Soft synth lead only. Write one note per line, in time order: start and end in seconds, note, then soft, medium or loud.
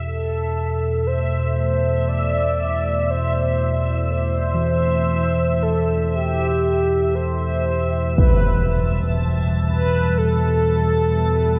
0.05 1.08 A4 loud
1.07 2.10 C5 loud
2.08 3.12 D5 loud
3.10 4.11 C5 medium
4.12 5.64 C5 loud
5.62 6.14 A4 medium
6.15 7.16 G4 loud
7.15 8.15 C5 loud
8.15 9.14 B4 medium
9.67 10.19 B4 loud
10.18 11.59 A4 loud